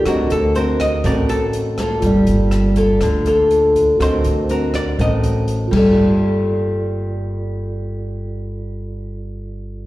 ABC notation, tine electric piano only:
X:1
M:4/4
L:1/8
Q:1/4=122
K:Gm
V:1 name="Tine electric piano"
[^FBce]8 | [FAd]8 | [^FBce]6- [FBce] [=FAd]- | [FAd]8- |
[FAd]8 |]